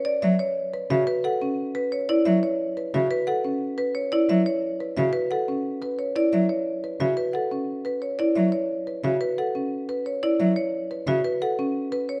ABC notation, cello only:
X:1
M:6/4
L:1/8
Q:1/4=177
K:Bm
V:1 name="Cello" clef=bass
z F, z3 C, z6 | z F, z3 C, z6 | z F, z3 C, z6 | z F, z3 C, z6 |
z F, z3 C, z6 | z F, z3 C, z6 |]